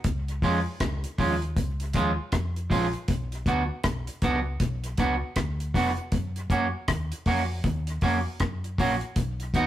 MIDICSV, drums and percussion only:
0, 0, Header, 1, 2, 480
1, 0, Start_track
1, 0, Key_signature, 6, "major"
1, 0, Tempo, 759494
1, 30, Time_signature, 4, 2, 24, 8
1, 6109, End_track
2, 0, Start_track
2, 0, Title_t, "Drums"
2, 26, Note_on_c, 9, 42, 93
2, 29, Note_on_c, 9, 36, 115
2, 90, Note_off_c, 9, 42, 0
2, 92, Note_off_c, 9, 36, 0
2, 179, Note_on_c, 9, 42, 46
2, 243, Note_off_c, 9, 42, 0
2, 267, Note_on_c, 9, 36, 90
2, 271, Note_on_c, 9, 46, 53
2, 330, Note_off_c, 9, 36, 0
2, 335, Note_off_c, 9, 46, 0
2, 508, Note_on_c, 9, 42, 92
2, 509, Note_on_c, 9, 36, 107
2, 510, Note_on_c, 9, 37, 116
2, 571, Note_off_c, 9, 42, 0
2, 572, Note_off_c, 9, 36, 0
2, 573, Note_off_c, 9, 37, 0
2, 656, Note_on_c, 9, 42, 61
2, 719, Note_off_c, 9, 42, 0
2, 748, Note_on_c, 9, 46, 87
2, 749, Note_on_c, 9, 36, 106
2, 811, Note_off_c, 9, 46, 0
2, 812, Note_off_c, 9, 36, 0
2, 898, Note_on_c, 9, 42, 34
2, 961, Note_off_c, 9, 42, 0
2, 989, Note_on_c, 9, 36, 110
2, 990, Note_on_c, 9, 42, 85
2, 1052, Note_off_c, 9, 36, 0
2, 1053, Note_off_c, 9, 42, 0
2, 1137, Note_on_c, 9, 42, 54
2, 1200, Note_off_c, 9, 42, 0
2, 1223, Note_on_c, 9, 42, 74
2, 1229, Note_on_c, 9, 36, 97
2, 1286, Note_off_c, 9, 42, 0
2, 1292, Note_off_c, 9, 36, 0
2, 1466, Note_on_c, 9, 42, 84
2, 1470, Note_on_c, 9, 36, 113
2, 1471, Note_on_c, 9, 37, 117
2, 1529, Note_off_c, 9, 42, 0
2, 1533, Note_off_c, 9, 36, 0
2, 1535, Note_off_c, 9, 37, 0
2, 1621, Note_on_c, 9, 42, 44
2, 1684, Note_off_c, 9, 42, 0
2, 1710, Note_on_c, 9, 36, 105
2, 1714, Note_on_c, 9, 46, 65
2, 1773, Note_off_c, 9, 36, 0
2, 1778, Note_off_c, 9, 46, 0
2, 1854, Note_on_c, 9, 42, 36
2, 1917, Note_off_c, 9, 42, 0
2, 1946, Note_on_c, 9, 42, 85
2, 1949, Note_on_c, 9, 36, 122
2, 2010, Note_off_c, 9, 42, 0
2, 2012, Note_off_c, 9, 36, 0
2, 2099, Note_on_c, 9, 42, 52
2, 2162, Note_off_c, 9, 42, 0
2, 2186, Note_on_c, 9, 36, 93
2, 2188, Note_on_c, 9, 42, 72
2, 2249, Note_off_c, 9, 36, 0
2, 2252, Note_off_c, 9, 42, 0
2, 2424, Note_on_c, 9, 42, 97
2, 2427, Note_on_c, 9, 37, 111
2, 2428, Note_on_c, 9, 36, 111
2, 2487, Note_off_c, 9, 42, 0
2, 2490, Note_off_c, 9, 37, 0
2, 2491, Note_off_c, 9, 36, 0
2, 2575, Note_on_c, 9, 42, 62
2, 2638, Note_off_c, 9, 42, 0
2, 2666, Note_on_c, 9, 42, 77
2, 2668, Note_on_c, 9, 36, 99
2, 2729, Note_off_c, 9, 42, 0
2, 2731, Note_off_c, 9, 36, 0
2, 2907, Note_on_c, 9, 42, 83
2, 2908, Note_on_c, 9, 36, 123
2, 2970, Note_off_c, 9, 42, 0
2, 2971, Note_off_c, 9, 36, 0
2, 3057, Note_on_c, 9, 42, 60
2, 3120, Note_off_c, 9, 42, 0
2, 3144, Note_on_c, 9, 42, 86
2, 3149, Note_on_c, 9, 36, 97
2, 3207, Note_off_c, 9, 42, 0
2, 3212, Note_off_c, 9, 36, 0
2, 3386, Note_on_c, 9, 42, 101
2, 3390, Note_on_c, 9, 36, 109
2, 3391, Note_on_c, 9, 37, 117
2, 3449, Note_off_c, 9, 42, 0
2, 3453, Note_off_c, 9, 36, 0
2, 3455, Note_off_c, 9, 37, 0
2, 3541, Note_on_c, 9, 42, 50
2, 3604, Note_off_c, 9, 42, 0
2, 3630, Note_on_c, 9, 36, 99
2, 3636, Note_on_c, 9, 46, 63
2, 3693, Note_off_c, 9, 36, 0
2, 3699, Note_off_c, 9, 46, 0
2, 3774, Note_on_c, 9, 42, 37
2, 3837, Note_off_c, 9, 42, 0
2, 3867, Note_on_c, 9, 42, 79
2, 3869, Note_on_c, 9, 36, 124
2, 3930, Note_off_c, 9, 42, 0
2, 3932, Note_off_c, 9, 36, 0
2, 4019, Note_on_c, 9, 42, 52
2, 4082, Note_off_c, 9, 42, 0
2, 4107, Note_on_c, 9, 36, 103
2, 4110, Note_on_c, 9, 42, 67
2, 4170, Note_off_c, 9, 36, 0
2, 4173, Note_off_c, 9, 42, 0
2, 4348, Note_on_c, 9, 42, 102
2, 4349, Note_on_c, 9, 36, 100
2, 4350, Note_on_c, 9, 37, 123
2, 4411, Note_off_c, 9, 42, 0
2, 4412, Note_off_c, 9, 36, 0
2, 4413, Note_off_c, 9, 37, 0
2, 4498, Note_on_c, 9, 42, 63
2, 4561, Note_off_c, 9, 42, 0
2, 4587, Note_on_c, 9, 46, 83
2, 4589, Note_on_c, 9, 36, 100
2, 4650, Note_off_c, 9, 46, 0
2, 4652, Note_off_c, 9, 36, 0
2, 4828, Note_on_c, 9, 42, 83
2, 4829, Note_on_c, 9, 36, 127
2, 4891, Note_off_c, 9, 42, 0
2, 4892, Note_off_c, 9, 36, 0
2, 4974, Note_on_c, 9, 42, 64
2, 5037, Note_off_c, 9, 42, 0
2, 5064, Note_on_c, 9, 46, 58
2, 5070, Note_on_c, 9, 36, 100
2, 5127, Note_off_c, 9, 46, 0
2, 5133, Note_off_c, 9, 36, 0
2, 5307, Note_on_c, 9, 42, 86
2, 5311, Note_on_c, 9, 36, 115
2, 5312, Note_on_c, 9, 37, 119
2, 5370, Note_off_c, 9, 42, 0
2, 5374, Note_off_c, 9, 36, 0
2, 5375, Note_off_c, 9, 37, 0
2, 5462, Note_on_c, 9, 42, 49
2, 5525, Note_off_c, 9, 42, 0
2, 5551, Note_on_c, 9, 36, 107
2, 5557, Note_on_c, 9, 46, 64
2, 5615, Note_off_c, 9, 36, 0
2, 5620, Note_off_c, 9, 46, 0
2, 5695, Note_on_c, 9, 42, 39
2, 5758, Note_off_c, 9, 42, 0
2, 5789, Note_on_c, 9, 42, 88
2, 5791, Note_on_c, 9, 36, 127
2, 5852, Note_off_c, 9, 42, 0
2, 5854, Note_off_c, 9, 36, 0
2, 5940, Note_on_c, 9, 42, 51
2, 6003, Note_off_c, 9, 42, 0
2, 6028, Note_on_c, 9, 36, 92
2, 6032, Note_on_c, 9, 42, 74
2, 6091, Note_off_c, 9, 36, 0
2, 6095, Note_off_c, 9, 42, 0
2, 6109, End_track
0, 0, End_of_file